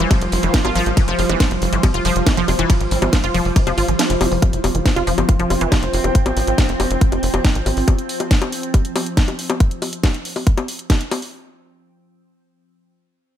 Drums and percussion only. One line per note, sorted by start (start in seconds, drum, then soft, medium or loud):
0.11 kick loud
0.11 closed hi-hat medium
0.11 ride medium
0.11 high bongo soft
0.21 closed hi-hat medium
0.32 open hi-hat loud
0.43 closed hi-hat medium
0.54 kick loud
0.54 snare loud
0.54 closed hi-hat loud
0.54 ride medium
0.65 closed hi-hat medium
0.65 high bongo medium
0.75 open hi-hat loud
0.86 closed hi-hat medium
0.97 kick loud
0.97 closed hi-hat loud
0.97 ride medium
1.08 closed hi-hat medium
1.19 open hi-hat loud
1.29 closed hi-hat medium
1.29 high bongo soft
1.40 kick loud
1.40 snare loud
1.40 closed hi-hat loud
1.40 ride medium
1.51 closed hi-hat medium
1.62 open hi-hat loud
1.73 closed hi-hat medium
1.83 kick loud
1.83 closed hi-hat loud
1.83 ride medium
1.83 high bongo medium
1.94 closed hi-hat medium
2.05 open hi-hat loud
2.16 closed hi-hat medium
2.27 kick loud
2.27 snare loud
2.27 closed hi-hat medium
2.27 ride medium
2.37 closed hi-hat medium
2.48 open hi-hat loud
2.48 high bongo soft
2.59 closed hi-hat medium
2.70 kick loud
2.70 closed hi-hat loud
2.70 ride medium
2.81 closed hi-hat medium
2.91 open hi-hat loud
3.02 closed hi-hat medium
3.02 high bongo medium
3.13 kick loud
3.13 snare loud
3.13 closed hi-hat loud
3.13 ride medium
3.24 closed hi-hat medium
3.34 open hi-hat loud
3.45 open hi-hat medium
3.56 kick loud
3.56 closed hi-hat loud
3.56 ride medium
3.67 closed hi-hat medium
3.67 high bongo soft
3.78 open hi-hat loud
3.88 closed hi-hat medium
3.99 snare loud
3.99 closed hi-hat loud
3.99 ride medium
4.10 closed hi-hat medium
4.21 open hi-hat loud
4.21 high bongo medium
4.32 open hi-hat medium
4.42 kick loud
4.42 closed hi-hat loud
4.42 high bongo soft
4.53 closed hi-hat medium
4.64 open hi-hat loud
4.64 high bongo medium
4.75 closed hi-hat medium
4.86 kick loud
4.86 snare loud
4.86 closed hi-hat loud
4.96 closed hi-hat medium
4.96 high bongo soft
5.07 open hi-hat loud
5.18 closed hi-hat medium
5.18 high bongo medium
5.29 kick loud
5.29 closed hi-hat loud
5.40 closed hi-hat medium
5.50 open hi-hat loud
5.50 high bongo soft
5.61 closed hi-hat medium
5.72 kick loud
5.72 snare loud
5.72 closed hi-hat loud
5.72 high bongo medium
5.83 closed hi-hat medium
5.93 open hi-hat loud
6.04 closed hi-hat medium
6.04 high bongo soft
6.15 kick loud
6.15 closed hi-hat medium
6.26 closed hi-hat medium
6.26 high bongo medium
6.37 open hi-hat loud
6.47 closed hi-hat medium
6.58 kick loud
6.58 snare loud
6.58 closed hi-hat medium
6.58 high bongo soft
6.69 closed hi-hat medium
6.80 open hi-hat loud
6.80 high bongo medium
6.91 closed hi-hat medium
7.01 kick loud
7.01 closed hi-hat medium
7.12 closed hi-hat medium
7.12 high bongo soft
7.23 open hi-hat loud
7.34 closed hi-hat medium
7.34 high bongo medium
7.45 kick loud
7.45 snare loud
7.45 closed hi-hat medium
7.55 closed hi-hat medium
7.66 open hi-hat loud
7.66 high bongo soft
7.77 open hi-hat medium
7.88 kick loud
7.88 closed hi-hat medium
7.88 high bongo medium
7.98 closed hi-hat soft
8.09 open hi-hat loud
8.20 closed hi-hat medium
8.20 high bongo soft
8.31 kick loud
8.31 snare loud
8.31 closed hi-hat medium
8.42 closed hi-hat medium
8.42 high bongo medium
8.52 open hi-hat loud
8.63 closed hi-hat medium
8.74 kick loud
8.74 closed hi-hat medium
8.74 high bongo soft
8.85 closed hi-hat medium
8.96 open hi-hat loud
8.96 high bongo medium
9.06 closed hi-hat medium
9.17 kick loud
9.17 snare loud
9.17 closed hi-hat medium
9.28 closed hi-hat medium
9.28 high bongo soft
9.39 open hi-hat loud
9.50 closed hi-hat medium
9.50 high bongo medium
9.60 kick loud
9.60 closed hi-hat medium
9.71 closed hi-hat soft
9.82 open hi-hat loud
9.82 high bongo soft
9.93 closed hi-hat medium
10.04 kick loud
10.04 snare loud
10.04 closed hi-hat medium
10.04 high bongo medium
10.14 closed hi-hat soft
10.25 open hi-hat loud
10.36 open hi-hat medium
10.36 high bongo soft
10.47 kick loud
10.47 closed hi-hat medium
10.58 closed hi-hat soft
10.58 high bongo medium
10.68 open hi-hat loud
10.79 closed hi-hat soft
10.90 kick loud
10.90 snare loud
10.90 closed hi-hat medium
10.90 high bongo soft
11.01 closed hi-hat soft
11.11 open hi-hat loud
11.11 high bongo medium
11.22 open hi-hat medium